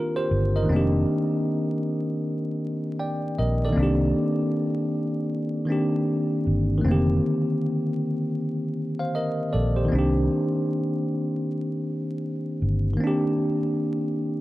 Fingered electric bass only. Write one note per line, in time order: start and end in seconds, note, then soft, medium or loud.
0.31 0.65 G1 medium
0.70 1.04 F1 loud
3.39 3.73 A#1 medium
3.77 4.11 C2 loud
6.47 6.81 G1 medium
6.85 7.19 F1 loud
9.54 9.88 A#1 medium
9.93 10.27 C2 loud
12.62 12.96 G1 medium